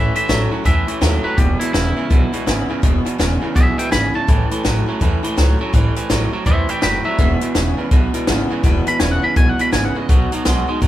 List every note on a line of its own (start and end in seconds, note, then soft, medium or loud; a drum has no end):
0.00 0.13 A1 medium
0.00 0.13 A2 medium
0.00 0.15 A2 medium
0.00 0.13 E3 loud
0.00 0.15 E3 medium
0.00 0.15 A3 medium
0.00 0.15 C#4 medium
0.00 0.13 E4 medium
0.00 0.15 E5 medium
0.14 0.27 A2 medium
0.14 0.28 E3 medium
0.14 0.28 A3 soft
0.14 0.28 C#4 soft
0.14 0.28 E4 soft
0.14 0.51 E5 loud
0.14 muted upright bass stroke medium
0.14 closed hi-hat medium
0.28 0.49 A1 medium
0.28 0.51 A2 medium
0.28 0.49 A2 medium
0.28 0.51 E3 medium
0.28 0.49 F#3 loud
0.28 0.52 A3 medium
0.28 0.51 C#4 medium
0.28 0.49 E4 medium
0.28 snare loud
0.28 closed hi-hat medium
0.50 0.64 A2 medium
0.50 0.64 F#3 medium
0.50 0.64 A3 soft
0.50 0.65 C#4 medium
0.50 0.65 E4 medium
0.50 muted upright bass stroke medium
0.64 0.86 E2 loud
0.64 0.85 A2 medium
0.64 0.87 E3 medium
0.64 0.86 E3 loud
0.64 0.88 A3 medium
0.64 0.87 C#4 medium
0.64 0.86 E4 medium
0.64 1.23 E5 loud
0.64 kick medium
0.64 closed hi-hat medium
0.87 1.00 A2 medium
0.87 1.00 E3 medium
0.87 1.01 A3 soft
0.87 1.01 C#4 medium
0.87 1.01 E4 soft
0.87 muted upright bass stroke medium
0.87 closed hi-hat medium
1.01 1.22 D#2 medium
1.01 1.24 A2 medium
1.01 1.22 A2 loud
1.01 1.24 E3 medium
1.01 1.22 F#3 loud
1.01 1.24 A3 medium
1.01 1.24 C#4 medium
1.01 1.22 E4 medium
1.01 snare loud
1.01 closed hi-hat medium
1.23 1.36 A2 medium
1.23 1.36 F#3 medium
1.23 1.38 A3 soft
1.23 1.38 C#4 medium
1.23 1.38 E4 medium
1.23 1.37 B4 medium
1.23 muted upright bass stroke medium
1.37 1.58 E1 loud
1.37 1.60 E2 medium
1.37 1.58 E2 medium
1.37 1.60 B2 medium
1.37 1.58 B2 loud
1.37 1.61 E3 medium
1.37 1.61 G#3 medium
1.37 1.60 B3 medium
1.37 1.59 E4 medium
1.37 1.59 G4 medium
1.37 kick loud
1.37 closed hi-hat medium
1.59 1.72 E2 medium
1.59 1.73 B2 medium
1.59 1.74 E3 soft
1.59 1.74 G#3 medium
1.59 1.75 B3 medium
1.59 1.72 E4 medium
1.59 1.74 E4 medium
1.59 muted upright bass stroke medium
1.59 closed hi-hat medium
1.73 1.95 E1 medium
1.73 1.94 E2 loud
1.73 1.97 E2 medium
1.73 1.97 B2 medium
1.73 1.94 C#3 loud
1.73 1.97 E3 medium
1.73 1.98 G#3 medium
1.73 1.97 B3 medium
1.73 2.79 E4 loud
1.73 1.95 E4 medium
1.73 snare loud
1.73 closed hi-hat medium
1.97 2.09 E2 medium
1.97 2.09 C#3 medium
1.97 2.09 E3 soft
1.97 2.10 G#3 medium
1.97 2.11 B3 medium
1.97 2.10 E4 medium
2.10 2.31 B1 medium
2.10 2.31 E2 medium
2.10 2.31 B2 loud
2.10 2.33 E3 medium
2.10 2.34 G#3 medium
2.10 2.33 B3 medium
2.10 2.31 E4 medium
2.10 kick loud
2.10 closed hi-hat medium
2.32 2.45 E2 medium
2.32 2.46 B2 medium
2.32 2.47 E3 medium
2.32 2.47 G#3 medium
2.32 2.47 B3 medium
2.32 2.46 E4 medium
2.32 closed hi-hat medium
2.46 2.67 G#1 medium
2.46 2.69 E2 medium
2.46 2.67 E2 loud
2.46 2.70 B2 medium
2.46 2.68 C#3 loud
2.46 2.70 E3 medium
2.46 2.69 G#3 medium
2.46 2.69 B3 medium
2.46 2.67 E4 loud
2.46 snare medium
2.46 closed hi-hat medium
2.68 2.82 E2 medium
2.68 2.82 C#3 medium
2.68 2.82 E3 medium
2.68 2.82 G#3 medium
2.68 2.83 B3 medium
2.68 2.83 E4 medium
2.68 muted upright bass stroke medium
2.82 3.04 E1 medium
2.82 3.05 E2 medium
2.82 3.04 E2 medium
2.82 3.06 B2 medium
2.82 3.04 B2 loud
2.82 3.06 E3 medium
2.82 3.06 G#3 medium
2.82 3.05 B3 medium
2.82 3.04 E4 medium
2.82 kick loud
2.82 closed hi-hat medium
3.05 3.18 E2 medium
3.05 3.18 B2 medium
3.05 3.18 E3 soft
3.05 3.19 G#3 medium
3.05 3.19 B3 medium
3.05 3.19 E4 medium
3.05 closed hi-hat medium
3.18 3.40 E1 medium
3.18 3.42 E2 medium
3.18 3.40 E2 medium
3.18 3.42 B2 medium
3.18 3.40 C#3 loud
3.18 3.42 E3 medium
3.18 3.42 G#3 medium
3.18 3.41 B3 medium
3.18 3.40 E4 medium
3.18 snare loud
3.18 closed hi-hat medium
3.41 3.54 E2 medium
3.41 3.54 C#3 medium
3.41 3.54 E3 medium
3.41 3.55 G#3 soft
3.41 3.56 B3 medium
3.41 3.55 E4 medium
3.55 3.76 B1 medium
3.55 3.76 E2 medium
3.55 3.76 B2 loud
3.55 3.78 E3 medium
3.55 3.78 G#3 medium
3.55 3.77 B3 medium
3.55 3.76 E4 medium
3.55 3.78 G#4 medium
3.55 3.77 E5 loud
3.55 kick loud
3.55 closed hi-hat medium
3.77 3.90 E2 medium
3.77 3.91 B2 medium
3.77 3.91 E3 soft
3.77 3.91 G#3 soft
3.77 3.92 B3 medium
3.77 3.91 E4 medium
3.77 3.91 E5 medium
3.77 3.92 G5 medium
3.77 muted upright bass stroke medium
3.77 closed hi-hat medium
3.91 4.13 G#1 medium
3.91 4.14 E2 medium
3.91 4.12 E2 medium
3.91 4.14 B2 medium
3.91 4.12 C#3 medium
3.91 4.15 E3 medium
3.91 4.15 G#3 medium
3.91 4.14 B3 medium
3.91 4.13 E4 medium
3.91 4.13 G#5 loud
3.91 4.14 B5 loud
3.91 snare loud
3.91 closed hi-hat medium
4.14 4.27 E2 medium
4.14 4.27 C#3 medium
4.14 4.27 E3 soft
4.14 4.28 G#3 medium
4.14 4.29 B3 soft
4.14 4.28 E4 medium
4.14 5.21 A5 loud
4.14 muted upright bass stroke medium
4.27 4.49 A1 medium
4.27 4.51 A2 medium
4.27 4.49 A2 medium
4.27 4.51 E3 medium
4.27 4.49 E3 medium
4.27 4.51 A3 medium
4.27 4.51 C#4 medium
4.27 4.49 E4 medium
4.27 kick loud
4.27 closed hi-hat medium
4.50 4.63 A2 medium
4.50 4.64 E3 medium
4.50 4.64 A3 soft
4.50 4.64 C#4 medium
4.50 4.64 E4 soft
4.50 muted upright bass stroke medium
4.50 closed hi-hat medium
4.63 4.85 A1 medium
4.63 4.87 A2 medium
4.63 4.85 A2 medium
4.63 4.87 E3 medium
4.63 4.85 F#3 loud
4.63 4.88 A3 medium
4.63 4.87 C#4 medium
4.63 4.85 E4 loud
4.63 snare loud
4.63 closed hi-hat medium
4.86 5.00 A2 medium
4.86 5.00 F#3 medium
4.86 5.00 A3 soft
4.86 5.01 C#4 medium
4.86 5.00 E4 medium
4.86 muted upright bass stroke medium
5.00 5.22 E2 loud
5.00 5.22 A2 loud
5.00 5.23 E3 medium
5.00 5.22 E3 medium
5.00 5.24 A3 medium
5.00 5.24 C#4 medium
5.00 5.22 E4 medium
5.00 kick loud
5.00 closed hi-hat medium
5.23 5.36 A2 medium
5.23 5.36 E3 medium
5.23 5.37 A3 soft
5.23 5.37 C#4 medium
5.23 5.37 E4 medium
5.23 closed hi-hat medium
5.37 5.58 C#2 medium
5.37 5.60 A2 medium
5.37 5.58 A2 medium
5.37 5.60 E3 medium
5.37 5.58 F#3 loud
5.37 5.60 A3 medium
5.37 5.60 C#4 medium
5.37 5.58 E4 medium
5.37 snare medium
5.37 closed hi-hat medium
5.59 5.72 A2 medium
5.59 5.73 F#3 medium
5.59 5.74 A3 soft
5.59 5.74 C#4 medium
5.59 5.73 E4 medium
5.59 muted upright bass stroke medium
5.73 5.94 A1 loud
5.73 5.96 A2 medium
5.73 5.94 A2 medium
5.73 5.96 E3 medium
5.73 5.95 E3 loud
5.73 5.97 G3 medium
5.73 5.96 C4 loud
5.73 5.94 E4 loud
5.73 kick loud
5.73 closed hi-hat medium
5.95 6.09 A2 medium
5.95 6.09 E3 medium
5.95 6.09 G3 medium
5.95 6.10 C4 medium
5.95 6.09 E4 medium
5.95 muted upright bass stroke medium
5.95 closed hi-hat medium
6.09 6.30 A1 medium
6.09 6.32 A2 medium
6.09 6.30 A2 loud
6.09 6.32 E3 medium
6.09 6.31 F#3 medium
6.09 6.33 G3 medium
6.09 6.32 C4 loud
6.09 6.30 E4 medium
6.09 snare loud
6.09 closed hi-hat medium
6.31 6.45 A2 medium
6.31 6.45 F#3 medium
6.31 6.45 G3 medium
6.31 6.46 C4 medium
6.31 6.46 E4 medium
6.45 6.67 E2 medium
6.45 6.67 A2 medium
6.45 6.68 E3 medium
6.45 6.67 E3 loud
6.45 6.69 G3 medium
6.45 6.68 C4 medium
6.45 6.66 E4 medium
6.45 6.69 C5 medium
6.45 6.69 E5 loud
6.45 kick loud
6.45 closed hi-hat medium
6.67 6.81 A2 medium
6.67 6.82 E3 medium
6.67 6.81 G3 soft
6.67 6.82 C4 medium
6.67 6.82 E4 medium
6.67 6.83 E5 medium
6.67 6.81 G5 medium
6.67 muted upright bass stroke medium
6.67 closed hi-hat medium
6.81 7.03 F#1 medium
6.81 7.05 A2 medium
6.81 7.03 A2 medium
6.81 7.05 E3 medium
6.81 7.03 F#3 medium
6.81 7.05 G3 medium
6.81 7.05 C4 medium
6.81 7.03 E4 medium
6.81 7.04 G5 medium
6.81 7.05 B5 medium
6.81 snare loud
6.81 closed hi-hat medium
7.04 7.17 A2 medium
7.04 7.18 F#3 medium
7.04 7.19 G3 medium
7.04 7.19 C4 medium
7.04 7.18 E4 medium
7.04 8.11 E5 loud
7.18 7.39 E1 loud
7.18 7.41 E2 medium
7.18 7.39 E2 medium
7.18 7.41 B2 medium
7.18 7.39 B2 loud
7.18 7.42 E3 medium
7.18 7.41 G#3 medium
7.18 7.41 B3 medium
7.18 7.39 E4 medium
7.18 kick loud
7.18 closed hi-hat medium
7.40 7.54 E2 medium
7.40 7.54 B2 medium
7.40 7.55 E3 soft
7.40 7.55 G#3 soft
7.40 7.55 B3 medium
7.40 7.54 E4 medium
7.40 muted upright bass stroke medium
7.40 closed hi-hat medium
7.54 7.75 E1 medium
7.54 7.78 E2 medium
7.54 7.76 E2 medium
7.54 7.78 B2 medium
7.54 7.76 C#3 loud
7.54 7.78 E3 medium
7.54 7.78 G#3 medium
7.54 7.77 B3 medium
7.54 7.76 E4 medium
7.54 snare loud
7.54 closed hi-hat medium
7.77 7.90 E2 medium
7.77 7.90 C#3 medium
7.77 7.90 E3 medium
7.77 7.91 G#3 medium
7.77 7.92 B3 medium
7.77 7.91 E4 medium
7.77 muted upright bass stroke medium
7.91 8.12 B1 loud
7.91 8.12 E2 medium
7.91 8.12 B2 loud
7.91 8.14 E3 medium
7.91 8.15 G#3 medium
7.91 8.14 B3 medium
7.91 8.12 E4 medium
7.91 kick loud
7.91 closed hi-hat medium
8.14 8.26 E2 medium
8.14 8.26 B2 medium
8.14 8.27 E3 soft
8.14 8.27 G#3 medium
8.14 8.27 B3 medium
8.14 8.28 E4 medium
8.14 closed hi-hat medium
8.27 8.48 G#1 medium
8.27 8.50 E2 medium
8.27 8.48 E2 medium
8.27 8.50 B2 medium
8.27 8.48 C#3 loud
8.27 8.51 E3 medium
8.27 8.50 G#3 medium
8.27 8.49 B3 medium
8.27 8.48 E4 medium
8.27 snare loud
8.27 closed hi-hat medium
8.49 8.63 E2 medium
8.49 8.63 C#3 medium
8.49 8.63 E3 medium
8.49 8.63 G#3 medium
8.49 8.64 B3 medium
8.49 8.63 E4 medium
8.49 muted upright bass stroke medium
8.63 8.84 E1 loud
8.63 8.86 E2 medium
8.63 8.85 E2 medium
8.63 8.87 B2 medium
8.63 8.85 B2 loud
8.63 8.87 E3 medium
8.63 8.86 G#3 medium
8.63 8.85 B3 loud
8.63 8.84 E4 medium
8.63 kick loud
8.63 closed hi-hat medium
8.85 8.99 E2 medium
8.85 8.99 B2 medium
8.85 8.99 E3 soft
8.85 9.00 G#3 soft
8.85 9.00 B3 medium
8.85 9.00 E4 medium
8.85 8.99 B5 loud
8.85 muted upright bass stroke medium
8.85 closed hi-hat medium
8.99 9.21 E1 medium
8.99 9.23 E2 medium
8.99 9.21 E2 medium
8.99 9.23 B2 medium
8.99 9.21 C#3 loud
8.99 9.23 E3 medium
8.99 9.23 G#3 medium
8.99 9.22 B3 medium
8.99 9.21 E4 medium
8.99 9.12 G#5 medium
8.99 snare loud
8.99 closed hi-hat medium
9.12 9.24 F#5 loud
9.22 9.35 E2 medium
9.22 9.35 C#3 medium
9.22 9.34 E3 soft
9.22 9.36 G#3 soft
9.22 9.37 B3 soft
9.22 9.36 E4 medium
9.22 9.36 B5 loud
9.22 muted upright bass stroke medium
9.35 9.57 B1 loud
9.35 9.57 E2 medium
9.35 9.57 B2 medium
9.35 9.59 E3 medium
9.35 9.59 G#3 medium
9.35 9.58 B3 medium
9.35 9.57 E4 medium
9.35 9.48 G#5 loud
9.35 kick loud
9.35 closed hi-hat medium
9.49 9.61 F#5 medium
9.58 9.72 E2 medium
9.58 9.72 B2 loud
9.58 9.71 E3 soft
9.58 9.72 G#3 soft
9.58 9.72 B3 medium
9.58 9.72 E4 medium
9.58 9.72 B5 medium
9.58 muted upright bass stroke medium
9.58 closed hi-hat medium
9.71 9.93 G#1 medium
9.71 9.95 E2 medium
9.71 9.93 E2 medium
9.71 9.95 B2 medium
9.71 9.94 C#3 loud
9.71 9.95 E3 medium
9.71 9.96 G#3 medium
9.71 9.94 B3 medium
9.71 9.93 E4 medium
9.71 9.85 G#5 medium
9.71 snare loud
9.71 closed hi-hat medium
9.85 9.97 F#5 loud
9.94 10.08 E2 medium
9.94 10.08 C#3 medium
9.94 10.09 E3 soft
9.94 10.10 G#3 medium
9.94 10.09 B3 soft
9.94 10.08 E4 medium
9.94 10.67 D#5 loud
9.94 muted upright bass stroke medium
10.09 10.30 B1 loud
10.09 10.32 B2 medium
10.09 10.29 B2 loud
10.09 10.32 F#3 medium
10.09 10.30 F#3 medium
10.09 10.32 B3 medium
10.09 10.32 D#4 medium
10.09 10.30 F#4 medium
10.09 kick loud
10.09 closed hi-hat medium
10.31 10.44 B2 medium
10.31 10.44 F#3 medium
10.31 10.45 B3 soft
10.31 10.45 D#4 soft
10.31 10.45 F#4 soft
10.31 muted upright bass stroke medium
10.31 closed hi-hat medium
10.45 10.66 B1 medium
10.45 10.68 B2 medium
10.45 10.66 B2 loud
10.45 10.68 F#3 medium
10.45 10.66 G#3 medium
10.45 10.68 B3 medium
10.45 10.68 D#4 loud
10.45 10.66 F#4 medium
10.45 snare loud
10.45 closed hi-hat medium
10.67 10.80 B2 medium
10.67 10.81 G#3 medium
10.67 10.80 B3 medium
10.67 10.82 D#4 medium
10.67 10.81 F#4 medium
10.67 muted upright bass stroke medium
10.81 10.88 F#2 medium
10.81 10.88 B2 medium
10.81 10.88 F#3 medium
10.81 10.88 B3 medium
10.81 10.88 D#4 medium
10.81 10.88 F#4 medium
10.81 kick loud
10.81 closed hi-hat medium